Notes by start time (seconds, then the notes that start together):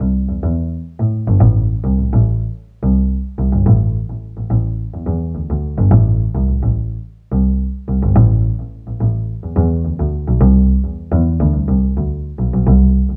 0.00 C2
0.29 E2
0.43 E2
0.99 A2
1.28 G1
1.40 A1
1.84 C2
1.98 A1
2.13 A1
2.83 C2
3.38 C2
3.52 G1
3.66 A1
4.09 A1
4.37 A1
4.50 A1
4.94 E2
5.06 E2
5.35 D2
5.50 D2
5.78 G1
5.91 A1
6.35 C2
6.48 A1
6.63 A1
7.32 C2
7.88 C2
8.03 G1
8.16 A1
8.59 A1
8.87 A1
9.00 A1
9.43 E2
9.56 E2
9.85 D2
9.99 D2
10.28 B1
10.41 C2
10.84 E2
11.12 E2
11.40 D2
11.53 C2
11.68 C2
11.97 D2
12.38 B1
12.53 B1
12.67 C2
13.09 D2